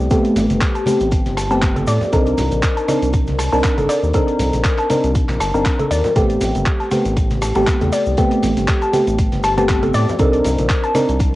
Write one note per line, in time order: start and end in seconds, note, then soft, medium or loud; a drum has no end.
0.11 0.84 A3 loud
0.11 0.84 B3 medium
0.11 0.84 C4 medium
0.11 0.84 G4 loud
0.11 0.21 A4 medium
0.11 kick loud
0.11 closed hi-hat medium
0.11 high conga medium
0.11 shaker medium
0.25 closed hi-hat soft
0.25 shaker soft
0.36 0.48 A1 medium
0.36 closed hi-hat medium
0.36 open hi-hat loud
0.36 low conga medium
0.36 shaker medium
0.49 0.60 G1 loud
0.49 snare soft
0.49 closed hi-hat medium
0.49 high conga medium
0.49 shaker soft
0.61 kick loud
0.61 snare loud
0.61 clap loud
0.61 closed hi-hat medium
0.61 shaker soft
0.75 0.86 A5 medium
0.75 closed hi-hat soft
0.75 shaker soft
0.86 1.48 A3 medium
0.86 1.48 B3 medium
0.86 1.48 C4 medium
0.86 1.48 G4 medium
0.86 closed hi-hat medium
0.86 open hi-hat medium
0.86 high conga loud
0.86 shaker loud
1.00 1.22 A1 loud
1.00 closed hi-hat medium
1.00 shaker soft
1.11 kick loud
1.11 closed hi-hat medium
1.11 shaker medium
1.25 1.85 G1 medium
1.25 snare medium
1.25 closed hi-hat soft
1.25 high conga medium
1.25 shaker soft
1.37 1.47 A5 medium
1.37 cross-stick medium
1.37 closed hi-hat medium
1.37 open hi-hat loud
1.37 shaker medium
1.50 2.10 A3 medium
1.50 2.10 B3 medium
1.50 2.10 C4 medium
1.50 2.10 G4 medium
1.50 1.59 A5 medium
1.50 closed hi-hat soft
1.50 shaker soft
1.62 kick loud
1.62 snare loud
1.62 clap loud
1.62 closed hi-hat medium
1.62 shaker medium
1.76 1.84 A4 medium
1.76 closed hi-hat soft
1.76 high conga medium
1.76 shaker soft
1.87 1.99 A2 medium
1.87 1.93 D5 loud
1.87 closed hi-hat medium
1.87 open hi-hat loud
1.87 shaker loud
2.01 snare medium
2.01 low conga medium
2.01 shaker soft
2.13 2.34 C2 loud
2.13 2.86 C4 medium
2.13 2.86 D4 medium
2.13 2.86 D#4 medium
2.13 2.22 A4 medium
2.13 2.86 A#4 loud
2.13 kick loud
2.13 closed hi-hat medium
2.13 high conga medium
2.13 shaker medium
2.26 closed hi-hat soft
2.26 shaker soft
2.37 2.50 C2 medium
2.37 closed hi-hat medium
2.37 open hi-hat loud
2.37 low conga medium
2.37 shaker medium
2.51 2.61 A#1 loud
2.51 closed hi-hat soft
2.51 high conga medium
2.51 shaker soft
2.62 kick loud
2.62 snare loud
2.62 clap loud
2.62 closed hi-hat medium
2.62 shaker medium
2.77 2.88 A5 medium
2.77 closed hi-hat soft
2.77 shaker soft
2.88 3.49 C4 medium
2.88 3.49 D4 medium
2.88 3.49 D#4 medium
2.88 3.49 A#4 medium
2.88 cross-stick medium
2.88 snare soft
2.88 closed hi-hat medium
2.88 open hi-hat medium
2.88 high conga medium
2.88 shaker medium
3.02 3.49 C2 loud
3.02 closed hi-hat soft
3.02 shaker soft
3.13 kick loud
3.13 closed hi-hat medium
3.13 shaker soft
3.27 snare soft
3.27 closed hi-hat soft
3.27 high conga medium
3.27 shaker soft
3.38 3.48 A5 medium
3.38 cross-stick medium
3.38 open hi-hat medium
3.38 open hi-hat loud
3.38 shaker loud
3.52 3.62 C2 medium
3.52 4.12 C4 medium
3.52 4.12 D4 medium
3.52 4.12 D#4 medium
3.52 4.12 A#4 medium
3.52 3.60 A5 medium
3.52 shaker soft
3.63 kick loud
3.63 snare loud
3.63 clap loud
3.63 closed hi-hat medium
3.63 shaker medium
3.78 3.88 G1 medium
3.78 3.86 A4 medium
3.78 snare soft
3.78 closed hi-hat soft
3.78 high conga medium
3.78 shaker soft
3.89 3.95 D5 loud
3.89 closed hi-hat medium
3.89 open hi-hat loud
3.89 shaker loud
4.03 4.13 D#2 medium
4.03 shaker soft
4.14 4.87 C4 loud
4.14 4.87 D4 medium
4.14 4.87 D#4 medium
4.14 4.24 A4 medium
4.14 4.87 A#4 loud
4.14 kick loud
4.14 closed hi-hat medium
4.14 high conga medium
4.14 shaker medium
4.28 closed hi-hat soft
4.28 shaker soft
4.40 4.51 C2 medium
4.40 closed hi-hat medium
4.40 open hi-hat loud
4.40 low conga medium
4.40 shaker medium
4.53 4.63 A#1 loud
4.53 snare soft
4.53 closed hi-hat soft
4.53 high conga medium
4.53 shaker soft
4.64 kick loud
4.64 snare loud
4.64 clap loud
4.64 closed hi-hat medium
4.64 shaker medium
4.78 4.89 A5 medium
4.78 clap soft
4.78 closed hi-hat soft
4.78 shaker soft
4.90 5.51 C4 medium
4.90 5.51 D4 medium
4.90 5.51 D#4 medium
4.90 5.51 A#4 medium
4.90 closed hi-hat medium
4.90 open hi-hat medium
4.90 high conga medium
4.90 shaker medium
5.04 5.25 C2 loud
5.04 closed hi-hat soft
5.04 shaker soft
5.15 kick loud
5.15 closed hi-hat medium
5.15 shaker soft
5.28 5.40 A#1 medium
5.28 snare medium
5.28 clap soft
5.28 closed hi-hat soft
5.28 high conga medium
5.28 shaker soft
5.40 5.52 G1 medium
5.40 5.50 A5 medium
5.40 cross-stick medium
5.40 closed hi-hat medium
5.40 open hi-hat loud
5.40 shaker medium
5.54 5.64 G1 medium
5.54 6.13 C4 medium
5.54 6.13 D4 medium
5.54 6.13 D#4 medium
5.54 6.13 A#4 medium
5.54 5.62 A5 medium
5.54 closed hi-hat soft
5.54 shaker soft
5.65 kick loud
5.65 snare loud
5.65 clap loud
5.65 closed hi-hat medium
5.65 shaker medium
5.79 5.87 A4 medium
5.79 closed hi-hat soft
5.79 high conga loud
5.79 shaker soft
5.91 6.03 D#2 medium
5.91 5.97 D5 loud
5.91 closed hi-hat medium
5.91 open hi-hat medium
5.91 shaker medium
6.04 snare medium
6.04 low conga medium
6.04 shaker soft
6.16 6.38 A1 loud
6.16 6.89 A3 loud
6.16 6.89 B3 medium
6.16 6.89 C4 medium
6.16 6.89 G4 loud
6.16 6.26 A4 medium
6.16 kick loud
6.16 closed hi-hat medium
6.16 high conga medium
6.16 shaker medium
6.30 closed hi-hat soft
6.30 shaker soft
6.41 6.53 A1 medium
6.41 closed hi-hat medium
6.41 open hi-hat loud
6.41 low conga medium
6.41 shaker loud
6.55 6.65 G1 loud
6.55 closed hi-hat soft
6.55 high conga medium
6.55 shaker soft
6.66 kick loud
6.66 snare loud
6.66 clap loud
6.66 closed hi-hat medium
6.66 shaker medium
6.80 6.91 A5 medium
6.80 closed hi-hat soft
6.80 shaker soft
6.91 7.53 A3 medium
6.91 7.53 B3 medium
6.91 7.53 C4 medium
6.91 7.53 G4 medium
6.91 cross-stick medium
6.91 snare soft
6.91 closed hi-hat medium
6.91 open hi-hat medium
6.91 high conga medium
6.91 shaker medium
7.05 7.53 A1 loud
7.05 closed hi-hat soft
7.05 shaker soft
7.17 kick loud
7.17 closed hi-hat medium
7.17 shaker soft
7.30 snare soft
7.30 closed hi-hat soft
7.30 high conga medium
7.30 shaker soft
7.41 7.52 A5 medium
7.41 cross-stick medium
7.41 open hi-hat medium
7.41 open hi-hat loud
7.41 shaker medium
7.55 7.66 A1 medium
7.55 8.15 A3 medium
7.55 8.15 B3 medium
7.55 8.15 C4 medium
7.55 8.15 G4 medium
7.55 7.64 A5 medium
7.55 muted conga medium
7.55 shaker soft
7.67 kick loud
7.67 snare loud
7.67 clap loud
7.67 closed hi-hat medium
7.67 shaker medium
7.81 7.91 E2 loud
7.81 7.89 A4 medium
7.81 snare soft
7.81 closed hi-hat soft
7.81 high conga medium
7.81 shaker soft
7.92 7.98 D5 loud
7.92 closed hi-hat medium
7.92 open hi-hat loud
7.92 muted conga soft
7.92 shaker loud
8.06 8.16 C2 medium
8.06 shaker soft
8.17 8.91 A3 loud
8.17 8.91 B3 medium
8.17 8.91 C4 medium
8.17 8.91 G4 loud
8.17 8.27 A4 medium
8.17 kick loud
8.17 closed hi-hat medium
8.17 high conga medium
8.17 shaker soft
8.31 closed hi-hat soft
8.31 muted conga medium
8.31 shaker soft
8.43 8.55 A1 medium
8.43 closed hi-hat medium
8.43 open hi-hat medium
8.43 low conga medium
8.43 shaker medium
8.56 8.66 G1 loud
8.56 snare soft
8.56 closed hi-hat medium
8.56 high conga medium
8.56 shaker soft
8.67 kick loud
8.67 snare loud
8.67 clap loud
8.67 closed hi-hat medium
8.67 shaker medium
8.81 8.93 A5 medium
8.81 closed hi-hat soft
8.81 shaker soft
8.93 9.54 A3 medium
8.93 9.54 B3 medium
8.93 9.54 C4 medium
8.93 9.54 G4 medium
8.93 closed hi-hat medium
8.93 open hi-hat medium
8.93 high conga medium
8.93 shaker medium
9.07 9.28 A1 loud
9.07 closed hi-hat soft
9.07 shaker soft
9.18 kick loud
9.18 closed hi-hat medium
9.18 closed hi-hat loud
9.18 shaker medium
9.32 9.91 G1 medium
9.32 snare medium
9.32 closed hi-hat soft
9.32 high conga medium
9.32 shaker soft
9.43 9.53 A5 medium
9.43 cross-stick medium
9.43 closed hi-hat medium
9.43 open hi-hat loud
9.43 shaker medium
9.57 10.17 A3 medium
9.57 10.17 B3 medium
9.57 10.17 C4 medium
9.57 10.17 G4 medium
9.57 9.65 A5 medium
9.57 closed hi-hat soft
9.57 muted conga medium
9.57 shaker soft
9.69 kick loud
9.69 snare loud
9.69 clap loud
9.69 closed hi-hat medium
9.69 shaker medium
9.83 9.91 A4 medium
9.83 closed hi-hat soft
9.83 high conga medium
9.83 shaker soft
9.94 10.06 A2 medium
9.94 10.00 D5 loud
9.94 closed hi-hat medium
9.94 open hi-hat medium
9.94 muted conga soft
9.94 shaker medium
10.08 snare soft
10.08 low conga medium
10.08 shaker soft
10.19 10.41 C2 loud
10.19 10.92 C4 medium
10.19 10.92 D4 medium
10.19 10.92 D#4 medium
10.19 10.29 A4 medium
10.19 10.92 A#4 loud
10.19 kick loud
10.19 closed hi-hat loud
10.19 closed hi-hat medium
10.19 high conga medium
10.19 shaker medium
10.33 closed hi-hat soft
10.33 shaker soft
10.44 10.56 C2 medium
10.44 closed hi-hat medium
10.44 open hi-hat medium
10.44 low conga medium
10.44 shaker medium
10.58 10.68 A#1 loud
10.58 closed hi-hat medium
10.58 high conga medium
10.58 shaker soft
10.69 kick loud
10.69 snare loud
10.69 clap loud
10.69 closed hi-hat medium
10.69 shaker medium
10.84 10.94 A5 medium
10.84 closed hi-hat soft
10.84 shaker soft
10.95 11.35 C4 medium
10.95 11.35 D4 medium
10.95 11.35 D#4 medium
10.95 11.35 A#4 medium
10.95 cross-stick medium
10.95 snare medium
10.95 closed hi-hat medium
10.95 open hi-hat medium
10.95 high conga medium
10.95 shaker medium
11.09 11.35 C2 loud
11.09 closed hi-hat medium
11.09 shaker soft
11.19 kick loud
11.19 closed hi-hat medium
11.19 shaker medium